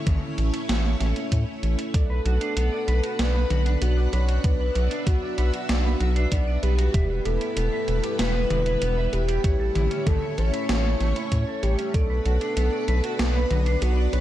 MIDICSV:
0, 0, Header, 1, 6, 480
1, 0, Start_track
1, 0, Key_signature, 2, "minor"
1, 0, Tempo, 625000
1, 1492, Time_signature, 4, 2, 24, 8
1, 10909, End_track
2, 0, Start_track
2, 0, Title_t, "Clean electric guitar"
2, 0, Program_c, 0, 27
2, 1492, Note_on_c, 0, 74, 77
2, 1576, Note_off_c, 0, 74, 0
2, 1612, Note_on_c, 0, 71, 72
2, 1695, Note_off_c, 0, 71, 0
2, 1732, Note_on_c, 0, 66, 74
2, 1782, Note_off_c, 0, 66, 0
2, 1851, Note_on_c, 0, 62, 77
2, 1935, Note_off_c, 0, 62, 0
2, 1971, Note_on_c, 0, 59, 82
2, 2086, Note_off_c, 0, 59, 0
2, 2091, Note_on_c, 0, 74, 71
2, 2175, Note_off_c, 0, 74, 0
2, 2212, Note_on_c, 0, 71, 72
2, 2295, Note_off_c, 0, 71, 0
2, 2332, Note_on_c, 0, 66, 76
2, 2415, Note_off_c, 0, 66, 0
2, 2451, Note_on_c, 0, 74, 81
2, 2535, Note_off_c, 0, 74, 0
2, 2571, Note_on_c, 0, 71, 73
2, 2655, Note_off_c, 0, 71, 0
2, 2691, Note_on_c, 0, 66, 75
2, 2742, Note_off_c, 0, 66, 0
2, 2811, Note_on_c, 0, 62, 76
2, 2895, Note_off_c, 0, 62, 0
2, 2932, Note_on_c, 0, 59, 80
2, 3046, Note_off_c, 0, 59, 0
2, 3051, Note_on_c, 0, 74, 74
2, 3135, Note_off_c, 0, 74, 0
2, 3171, Note_on_c, 0, 71, 73
2, 3255, Note_off_c, 0, 71, 0
2, 3292, Note_on_c, 0, 66, 73
2, 3375, Note_off_c, 0, 66, 0
2, 3412, Note_on_c, 0, 74, 77
2, 3495, Note_off_c, 0, 74, 0
2, 3532, Note_on_c, 0, 71, 74
2, 3615, Note_off_c, 0, 71, 0
2, 3652, Note_on_c, 0, 66, 73
2, 3702, Note_off_c, 0, 66, 0
2, 3772, Note_on_c, 0, 62, 78
2, 3856, Note_off_c, 0, 62, 0
2, 3892, Note_on_c, 0, 59, 85
2, 4006, Note_off_c, 0, 59, 0
2, 4013, Note_on_c, 0, 74, 74
2, 4096, Note_off_c, 0, 74, 0
2, 4133, Note_on_c, 0, 71, 71
2, 4216, Note_off_c, 0, 71, 0
2, 4252, Note_on_c, 0, 66, 75
2, 4335, Note_off_c, 0, 66, 0
2, 4372, Note_on_c, 0, 74, 82
2, 4455, Note_off_c, 0, 74, 0
2, 4492, Note_on_c, 0, 71, 74
2, 4575, Note_off_c, 0, 71, 0
2, 4612, Note_on_c, 0, 66, 75
2, 4662, Note_off_c, 0, 66, 0
2, 4731, Note_on_c, 0, 62, 75
2, 4815, Note_off_c, 0, 62, 0
2, 4852, Note_on_c, 0, 59, 79
2, 4966, Note_off_c, 0, 59, 0
2, 4972, Note_on_c, 0, 74, 75
2, 5055, Note_off_c, 0, 74, 0
2, 5092, Note_on_c, 0, 71, 75
2, 5175, Note_off_c, 0, 71, 0
2, 5212, Note_on_c, 0, 66, 76
2, 5295, Note_off_c, 0, 66, 0
2, 5332, Note_on_c, 0, 76, 78
2, 5415, Note_off_c, 0, 76, 0
2, 5452, Note_on_c, 0, 71, 71
2, 5536, Note_off_c, 0, 71, 0
2, 5573, Note_on_c, 0, 67, 75
2, 5622, Note_off_c, 0, 67, 0
2, 5692, Note_on_c, 0, 64, 74
2, 5775, Note_off_c, 0, 64, 0
2, 5812, Note_on_c, 0, 59, 80
2, 5926, Note_off_c, 0, 59, 0
2, 5932, Note_on_c, 0, 76, 75
2, 6015, Note_off_c, 0, 76, 0
2, 6052, Note_on_c, 0, 71, 75
2, 6135, Note_off_c, 0, 71, 0
2, 6172, Note_on_c, 0, 67, 73
2, 6256, Note_off_c, 0, 67, 0
2, 6292, Note_on_c, 0, 76, 81
2, 6375, Note_off_c, 0, 76, 0
2, 6411, Note_on_c, 0, 71, 72
2, 6495, Note_off_c, 0, 71, 0
2, 6532, Note_on_c, 0, 67, 76
2, 6582, Note_off_c, 0, 67, 0
2, 6652, Note_on_c, 0, 64, 74
2, 6736, Note_off_c, 0, 64, 0
2, 6772, Note_on_c, 0, 59, 80
2, 6886, Note_off_c, 0, 59, 0
2, 6891, Note_on_c, 0, 76, 73
2, 6975, Note_off_c, 0, 76, 0
2, 7012, Note_on_c, 0, 71, 76
2, 7095, Note_off_c, 0, 71, 0
2, 7131, Note_on_c, 0, 67, 77
2, 7215, Note_off_c, 0, 67, 0
2, 7251, Note_on_c, 0, 73, 77
2, 7335, Note_off_c, 0, 73, 0
2, 7371, Note_on_c, 0, 69, 72
2, 7455, Note_off_c, 0, 69, 0
2, 7490, Note_on_c, 0, 64, 74
2, 7541, Note_off_c, 0, 64, 0
2, 7610, Note_on_c, 0, 61, 76
2, 7695, Note_off_c, 0, 61, 0
2, 7730, Note_on_c, 0, 57, 81
2, 7845, Note_off_c, 0, 57, 0
2, 7851, Note_on_c, 0, 73, 73
2, 7935, Note_off_c, 0, 73, 0
2, 7971, Note_on_c, 0, 69, 71
2, 8055, Note_off_c, 0, 69, 0
2, 8091, Note_on_c, 0, 64, 75
2, 8175, Note_off_c, 0, 64, 0
2, 8211, Note_on_c, 0, 73, 78
2, 8295, Note_off_c, 0, 73, 0
2, 8332, Note_on_c, 0, 69, 72
2, 8415, Note_off_c, 0, 69, 0
2, 8452, Note_on_c, 0, 57, 77
2, 8502, Note_off_c, 0, 57, 0
2, 8571, Note_on_c, 0, 64, 100
2, 8622, Note_off_c, 0, 64, 0
2, 8691, Note_on_c, 0, 73, 78
2, 8775, Note_off_c, 0, 73, 0
2, 8811, Note_on_c, 0, 69, 73
2, 8926, Note_off_c, 0, 69, 0
2, 8932, Note_on_c, 0, 73, 95
2, 8982, Note_off_c, 0, 73, 0
2, 9052, Note_on_c, 0, 61, 75
2, 9136, Note_off_c, 0, 61, 0
2, 9172, Note_on_c, 0, 74, 78
2, 9256, Note_off_c, 0, 74, 0
2, 9292, Note_on_c, 0, 71, 73
2, 9376, Note_off_c, 0, 71, 0
2, 9412, Note_on_c, 0, 66, 75
2, 9462, Note_off_c, 0, 66, 0
2, 9532, Note_on_c, 0, 62, 74
2, 9615, Note_off_c, 0, 62, 0
2, 9652, Note_on_c, 0, 59, 82
2, 9766, Note_off_c, 0, 59, 0
2, 9773, Note_on_c, 0, 74, 72
2, 9856, Note_off_c, 0, 74, 0
2, 9893, Note_on_c, 0, 71, 73
2, 9976, Note_off_c, 0, 71, 0
2, 10012, Note_on_c, 0, 66, 75
2, 10096, Note_off_c, 0, 66, 0
2, 10132, Note_on_c, 0, 74, 82
2, 10215, Note_off_c, 0, 74, 0
2, 10252, Note_on_c, 0, 71, 71
2, 10335, Note_off_c, 0, 71, 0
2, 10372, Note_on_c, 0, 66, 76
2, 10422, Note_off_c, 0, 66, 0
2, 10492, Note_on_c, 0, 62, 77
2, 10576, Note_off_c, 0, 62, 0
2, 10612, Note_on_c, 0, 59, 80
2, 10726, Note_off_c, 0, 59, 0
2, 10732, Note_on_c, 0, 74, 75
2, 10815, Note_off_c, 0, 74, 0
2, 10852, Note_on_c, 0, 71, 73
2, 10909, Note_off_c, 0, 71, 0
2, 10909, End_track
3, 0, Start_track
3, 0, Title_t, "Soft synth lead"
3, 0, Program_c, 1, 80
3, 1492, Note_on_c, 1, 69, 111
3, 2453, Note_on_c, 1, 71, 110
3, 2464, Note_off_c, 1, 69, 0
3, 2928, Note_off_c, 1, 71, 0
3, 2933, Note_on_c, 1, 66, 96
3, 3172, Note_on_c, 1, 73, 107
3, 3184, Note_off_c, 1, 66, 0
3, 3410, Note_on_c, 1, 71, 109
3, 3422, Note_off_c, 1, 73, 0
3, 3886, Note_off_c, 1, 71, 0
3, 3891, Note_on_c, 1, 66, 101
3, 4341, Note_off_c, 1, 66, 0
3, 4370, Note_on_c, 1, 66, 104
3, 4850, Note_on_c, 1, 74, 112
3, 4862, Note_off_c, 1, 66, 0
3, 5091, Note_on_c, 1, 67, 108
3, 5102, Note_off_c, 1, 74, 0
3, 5571, Note_on_c, 1, 69, 102
3, 5583, Note_off_c, 1, 67, 0
3, 5807, Note_off_c, 1, 69, 0
3, 5812, Note_on_c, 1, 69, 106
3, 6292, Note_on_c, 1, 71, 115
3, 6303, Note_off_c, 1, 69, 0
3, 7010, Note_on_c, 1, 67, 109
3, 7022, Note_off_c, 1, 71, 0
3, 7731, Note_on_c, 1, 69, 101
3, 7743, Note_off_c, 1, 67, 0
3, 7970, Note_on_c, 1, 73, 119
3, 7982, Note_off_c, 1, 69, 0
3, 8927, Note_off_c, 1, 73, 0
3, 8931, Note_on_c, 1, 67, 93
3, 9172, Note_on_c, 1, 69, 107
3, 9183, Note_off_c, 1, 67, 0
3, 10132, Note_on_c, 1, 71, 108
3, 10143, Note_off_c, 1, 69, 0
3, 10612, Note_on_c, 1, 66, 91
3, 10624, Note_off_c, 1, 71, 0
3, 10851, Note_on_c, 1, 73, 104
3, 10863, Note_off_c, 1, 66, 0
3, 10909, Note_off_c, 1, 73, 0
3, 10909, End_track
4, 0, Start_track
4, 0, Title_t, "String machine"
4, 0, Program_c, 2, 50
4, 0, Note_on_c, 2, 57, 83
4, 0, Note_on_c, 2, 61, 76
4, 0, Note_on_c, 2, 64, 74
4, 0, Note_on_c, 2, 73, 91
4, 1473, Note_off_c, 2, 57, 0
4, 1473, Note_off_c, 2, 61, 0
4, 1473, Note_off_c, 2, 64, 0
4, 1473, Note_off_c, 2, 73, 0
4, 1492, Note_on_c, 2, 59, 79
4, 1492, Note_on_c, 2, 62, 77
4, 1492, Note_on_c, 2, 78, 75
4, 1493, Note_on_c, 2, 71, 91
4, 3393, Note_off_c, 2, 71, 0
4, 3412, Note_on_c, 2, 76, 87
4, 5301, Note_off_c, 2, 78, 0
4, 5302, Note_off_c, 2, 62, 0
4, 5313, Note_off_c, 2, 76, 0
4, 5332, Note_on_c, 2, 55, 80
4, 5332, Note_on_c, 2, 64, 77
4, 5332, Note_on_c, 2, 71, 89
4, 7222, Note_off_c, 2, 59, 0
4, 7233, Note_off_c, 2, 55, 0
4, 7233, Note_off_c, 2, 71, 0
4, 7251, Note_on_c, 2, 57, 81
4, 7251, Note_on_c, 2, 61, 74
4, 7251, Note_on_c, 2, 73, 91
4, 9142, Note_off_c, 2, 64, 0
4, 9152, Note_off_c, 2, 57, 0
4, 9152, Note_off_c, 2, 73, 0
4, 9153, Note_off_c, 2, 61, 0
4, 9172, Note_on_c, 2, 59, 79
4, 9173, Note_on_c, 2, 62, 74
4, 9173, Note_on_c, 2, 71, 90
4, 9173, Note_on_c, 2, 78, 74
4, 10909, Note_off_c, 2, 59, 0
4, 10909, Note_off_c, 2, 62, 0
4, 10909, Note_off_c, 2, 71, 0
4, 10909, Note_off_c, 2, 78, 0
4, 10909, End_track
5, 0, Start_track
5, 0, Title_t, "Analog synth bass"
5, 0, Program_c, 3, 38
5, 52, Note_on_c, 3, 33, 77
5, 152, Note_off_c, 3, 33, 0
5, 292, Note_on_c, 3, 33, 84
5, 392, Note_off_c, 3, 33, 0
5, 532, Note_on_c, 3, 33, 95
5, 732, Note_off_c, 3, 33, 0
5, 773, Note_on_c, 3, 33, 87
5, 873, Note_off_c, 3, 33, 0
5, 1012, Note_on_c, 3, 45, 86
5, 1112, Note_off_c, 3, 45, 0
5, 1252, Note_on_c, 3, 33, 81
5, 1352, Note_off_c, 3, 33, 0
5, 1492, Note_on_c, 3, 35, 100
5, 1691, Note_off_c, 3, 35, 0
5, 1732, Note_on_c, 3, 35, 100
5, 1832, Note_off_c, 3, 35, 0
5, 1972, Note_on_c, 3, 35, 78
5, 2072, Note_off_c, 3, 35, 0
5, 2211, Note_on_c, 3, 35, 84
5, 2312, Note_off_c, 3, 35, 0
5, 2452, Note_on_c, 3, 35, 86
5, 2652, Note_off_c, 3, 35, 0
5, 2692, Note_on_c, 3, 35, 104
5, 2891, Note_off_c, 3, 35, 0
5, 2932, Note_on_c, 3, 35, 101
5, 3132, Note_off_c, 3, 35, 0
5, 3172, Note_on_c, 3, 35, 85
5, 3372, Note_off_c, 3, 35, 0
5, 3411, Note_on_c, 3, 35, 99
5, 3611, Note_off_c, 3, 35, 0
5, 3652, Note_on_c, 3, 35, 98
5, 3752, Note_off_c, 3, 35, 0
5, 3892, Note_on_c, 3, 35, 78
5, 3992, Note_off_c, 3, 35, 0
5, 4133, Note_on_c, 3, 35, 83
5, 4233, Note_off_c, 3, 35, 0
5, 4373, Note_on_c, 3, 35, 87
5, 4572, Note_off_c, 3, 35, 0
5, 4612, Note_on_c, 3, 35, 100
5, 4812, Note_off_c, 3, 35, 0
5, 4852, Note_on_c, 3, 35, 99
5, 5051, Note_off_c, 3, 35, 0
5, 5092, Note_on_c, 3, 35, 88
5, 5292, Note_off_c, 3, 35, 0
5, 5332, Note_on_c, 3, 28, 101
5, 5532, Note_off_c, 3, 28, 0
5, 5573, Note_on_c, 3, 28, 96
5, 5672, Note_off_c, 3, 28, 0
5, 5812, Note_on_c, 3, 28, 82
5, 5912, Note_off_c, 3, 28, 0
5, 6052, Note_on_c, 3, 28, 84
5, 6152, Note_off_c, 3, 28, 0
5, 6292, Note_on_c, 3, 28, 86
5, 6492, Note_off_c, 3, 28, 0
5, 6532, Note_on_c, 3, 28, 106
5, 6732, Note_off_c, 3, 28, 0
5, 6772, Note_on_c, 3, 28, 104
5, 6972, Note_off_c, 3, 28, 0
5, 7012, Note_on_c, 3, 28, 86
5, 7212, Note_off_c, 3, 28, 0
5, 7251, Note_on_c, 3, 33, 97
5, 7451, Note_off_c, 3, 33, 0
5, 7492, Note_on_c, 3, 33, 98
5, 7592, Note_off_c, 3, 33, 0
5, 7731, Note_on_c, 3, 33, 80
5, 7832, Note_off_c, 3, 33, 0
5, 7973, Note_on_c, 3, 33, 82
5, 8072, Note_off_c, 3, 33, 0
5, 8213, Note_on_c, 3, 33, 94
5, 8412, Note_off_c, 3, 33, 0
5, 8452, Note_on_c, 3, 33, 88
5, 8552, Note_off_c, 3, 33, 0
5, 8692, Note_on_c, 3, 45, 89
5, 8792, Note_off_c, 3, 45, 0
5, 8932, Note_on_c, 3, 33, 77
5, 9032, Note_off_c, 3, 33, 0
5, 9172, Note_on_c, 3, 35, 97
5, 9372, Note_off_c, 3, 35, 0
5, 9413, Note_on_c, 3, 35, 100
5, 9512, Note_off_c, 3, 35, 0
5, 9653, Note_on_c, 3, 35, 81
5, 9752, Note_off_c, 3, 35, 0
5, 9893, Note_on_c, 3, 35, 86
5, 9992, Note_off_c, 3, 35, 0
5, 10134, Note_on_c, 3, 35, 88
5, 10332, Note_off_c, 3, 35, 0
5, 10374, Note_on_c, 3, 35, 107
5, 10572, Note_off_c, 3, 35, 0
5, 10613, Note_on_c, 3, 35, 101
5, 10812, Note_off_c, 3, 35, 0
5, 10853, Note_on_c, 3, 35, 87
5, 10909, Note_off_c, 3, 35, 0
5, 10909, End_track
6, 0, Start_track
6, 0, Title_t, "Drums"
6, 51, Note_on_c, 9, 42, 95
6, 51, Note_on_c, 9, 47, 88
6, 52, Note_on_c, 9, 36, 100
6, 128, Note_off_c, 9, 42, 0
6, 128, Note_off_c, 9, 47, 0
6, 129, Note_off_c, 9, 36, 0
6, 292, Note_on_c, 9, 42, 62
6, 368, Note_off_c, 9, 42, 0
6, 412, Note_on_c, 9, 42, 67
6, 488, Note_off_c, 9, 42, 0
6, 532, Note_on_c, 9, 38, 110
6, 532, Note_on_c, 9, 42, 92
6, 609, Note_off_c, 9, 38, 0
6, 609, Note_off_c, 9, 42, 0
6, 772, Note_on_c, 9, 38, 36
6, 772, Note_on_c, 9, 42, 64
6, 849, Note_off_c, 9, 38, 0
6, 849, Note_off_c, 9, 42, 0
6, 892, Note_on_c, 9, 42, 63
6, 969, Note_off_c, 9, 42, 0
6, 1012, Note_on_c, 9, 36, 56
6, 1013, Note_on_c, 9, 42, 90
6, 1089, Note_off_c, 9, 36, 0
6, 1089, Note_off_c, 9, 42, 0
6, 1252, Note_on_c, 9, 42, 66
6, 1329, Note_off_c, 9, 42, 0
6, 1372, Note_on_c, 9, 42, 64
6, 1449, Note_off_c, 9, 42, 0
6, 1492, Note_on_c, 9, 36, 117
6, 1492, Note_on_c, 9, 42, 97
6, 1568, Note_off_c, 9, 36, 0
6, 1569, Note_off_c, 9, 42, 0
6, 1732, Note_on_c, 9, 42, 66
6, 1809, Note_off_c, 9, 42, 0
6, 1852, Note_on_c, 9, 42, 66
6, 1929, Note_off_c, 9, 42, 0
6, 1972, Note_on_c, 9, 42, 94
6, 2048, Note_off_c, 9, 42, 0
6, 2211, Note_on_c, 9, 42, 66
6, 2288, Note_off_c, 9, 42, 0
6, 2331, Note_on_c, 9, 42, 68
6, 2408, Note_off_c, 9, 42, 0
6, 2451, Note_on_c, 9, 38, 112
6, 2451, Note_on_c, 9, 42, 95
6, 2528, Note_off_c, 9, 38, 0
6, 2528, Note_off_c, 9, 42, 0
6, 2691, Note_on_c, 9, 42, 67
6, 2691, Note_on_c, 9, 47, 87
6, 2768, Note_off_c, 9, 42, 0
6, 2768, Note_off_c, 9, 47, 0
6, 2811, Note_on_c, 9, 42, 67
6, 2888, Note_off_c, 9, 42, 0
6, 2931, Note_on_c, 9, 42, 97
6, 3007, Note_off_c, 9, 42, 0
6, 3171, Note_on_c, 9, 42, 66
6, 3248, Note_off_c, 9, 42, 0
6, 3291, Note_on_c, 9, 42, 65
6, 3368, Note_off_c, 9, 42, 0
6, 3411, Note_on_c, 9, 36, 121
6, 3411, Note_on_c, 9, 42, 94
6, 3488, Note_off_c, 9, 36, 0
6, 3488, Note_off_c, 9, 42, 0
6, 3651, Note_on_c, 9, 42, 67
6, 3728, Note_off_c, 9, 42, 0
6, 3772, Note_on_c, 9, 42, 68
6, 3848, Note_off_c, 9, 42, 0
6, 3891, Note_on_c, 9, 42, 97
6, 3892, Note_on_c, 9, 36, 104
6, 3968, Note_off_c, 9, 36, 0
6, 3968, Note_off_c, 9, 42, 0
6, 4131, Note_on_c, 9, 42, 68
6, 4208, Note_off_c, 9, 42, 0
6, 4251, Note_on_c, 9, 42, 67
6, 4328, Note_off_c, 9, 42, 0
6, 4371, Note_on_c, 9, 38, 118
6, 4371, Note_on_c, 9, 42, 97
6, 4448, Note_off_c, 9, 38, 0
6, 4448, Note_off_c, 9, 42, 0
6, 4612, Note_on_c, 9, 42, 68
6, 4688, Note_off_c, 9, 42, 0
6, 4732, Note_on_c, 9, 42, 66
6, 4808, Note_off_c, 9, 42, 0
6, 4851, Note_on_c, 9, 42, 95
6, 4852, Note_on_c, 9, 36, 61
6, 4928, Note_off_c, 9, 36, 0
6, 4928, Note_off_c, 9, 42, 0
6, 5091, Note_on_c, 9, 42, 67
6, 5168, Note_off_c, 9, 42, 0
6, 5211, Note_on_c, 9, 42, 67
6, 5288, Note_off_c, 9, 42, 0
6, 5331, Note_on_c, 9, 42, 94
6, 5332, Note_on_c, 9, 36, 123
6, 5408, Note_off_c, 9, 36, 0
6, 5408, Note_off_c, 9, 42, 0
6, 5571, Note_on_c, 9, 42, 66
6, 5648, Note_off_c, 9, 42, 0
6, 5691, Note_on_c, 9, 42, 65
6, 5768, Note_off_c, 9, 42, 0
6, 5811, Note_on_c, 9, 42, 96
6, 5888, Note_off_c, 9, 42, 0
6, 6051, Note_on_c, 9, 42, 63
6, 6128, Note_off_c, 9, 42, 0
6, 6171, Note_on_c, 9, 42, 67
6, 6248, Note_off_c, 9, 42, 0
6, 6291, Note_on_c, 9, 38, 118
6, 6291, Note_on_c, 9, 42, 93
6, 6368, Note_off_c, 9, 38, 0
6, 6368, Note_off_c, 9, 42, 0
6, 6531, Note_on_c, 9, 42, 65
6, 6531, Note_on_c, 9, 47, 92
6, 6608, Note_off_c, 9, 42, 0
6, 6608, Note_off_c, 9, 47, 0
6, 6651, Note_on_c, 9, 42, 66
6, 6728, Note_off_c, 9, 42, 0
6, 6771, Note_on_c, 9, 42, 91
6, 6848, Note_off_c, 9, 42, 0
6, 7011, Note_on_c, 9, 42, 65
6, 7088, Note_off_c, 9, 42, 0
6, 7131, Note_on_c, 9, 42, 65
6, 7208, Note_off_c, 9, 42, 0
6, 7251, Note_on_c, 9, 36, 124
6, 7251, Note_on_c, 9, 42, 92
6, 7328, Note_off_c, 9, 36, 0
6, 7328, Note_off_c, 9, 42, 0
6, 7492, Note_on_c, 9, 42, 62
6, 7492, Note_on_c, 9, 47, 93
6, 7568, Note_off_c, 9, 42, 0
6, 7568, Note_off_c, 9, 47, 0
6, 7611, Note_on_c, 9, 42, 64
6, 7688, Note_off_c, 9, 42, 0
6, 7731, Note_on_c, 9, 36, 106
6, 7731, Note_on_c, 9, 42, 91
6, 7731, Note_on_c, 9, 47, 97
6, 7808, Note_off_c, 9, 36, 0
6, 7808, Note_off_c, 9, 42, 0
6, 7808, Note_off_c, 9, 47, 0
6, 7972, Note_on_c, 9, 42, 63
6, 8049, Note_off_c, 9, 42, 0
6, 8092, Note_on_c, 9, 42, 65
6, 8169, Note_off_c, 9, 42, 0
6, 8211, Note_on_c, 9, 38, 120
6, 8211, Note_on_c, 9, 42, 90
6, 8288, Note_off_c, 9, 38, 0
6, 8288, Note_off_c, 9, 42, 0
6, 8452, Note_on_c, 9, 38, 36
6, 8452, Note_on_c, 9, 42, 64
6, 8528, Note_off_c, 9, 38, 0
6, 8528, Note_off_c, 9, 42, 0
6, 8571, Note_on_c, 9, 42, 62
6, 8648, Note_off_c, 9, 42, 0
6, 8692, Note_on_c, 9, 36, 59
6, 8692, Note_on_c, 9, 42, 90
6, 8768, Note_off_c, 9, 42, 0
6, 8769, Note_off_c, 9, 36, 0
6, 8932, Note_on_c, 9, 42, 62
6, 9008, Note_off_c, 9, 42, 0
6, 9052, Note_on_c, 9, 42, 63
6, 9129, Note_off_c, 9, 42, 0
6, 9172, Note_on_c, 9, 36, 116
6, 9172, Note_on_c, 9, 42, 90
6, 9249, Note_off_c, 9, 36, 0
6, 9249, Note_off_c, 9, 42, 0
6, 9412, Note_on_c, 9, 42, 60
6, 9489, Note_off_c, 9, 42, 0
6, 9532, Note_on_c, 9, 42, 62
6, 9609, Note_off_c, 9, 42, 0
6, 9652, Note_on_c, 9, 42, 86
6, 9729, Note_off_c, 9, 42, 0
6, 9892, Note_on_c, 9, 42, 60
6, 9969, Note_off_c, 9, 42, 0
6, 10013, Note_on_c, 9, 42, 64
6, 10089, Note_off_c, 9, 42, 0
6, 10132, Note_on_c, 9, 38, 119
6, 10132, Note_on_c, 9, 42, 87
6, 10209, Note_off_c, 9, 38, 0
6, 10209, Note_off_c, 9, 42, 0
6, 10372, Note_on_c, 9, 42, 62
6, 10372, Note_on_c, 9, 47, 94
6, 10449, Note_off_c, 9, 42, 0
6, 10449, Note_off_c, 9, 47, 0
6, 10492, Note_on_c, 9, 42, 62
6, 10569, Note_off_c, 9, 42, 0
6, 10613, Note_on_c, 9, 42, 87
6, 10689, Note_off_c, 9, 42, 0
6, 10852, Note_on_c, 9, 42, 61
6, 10909, Note_off_c, 9, 42, 0
6, 10909, End_track
0, 0, End_of_file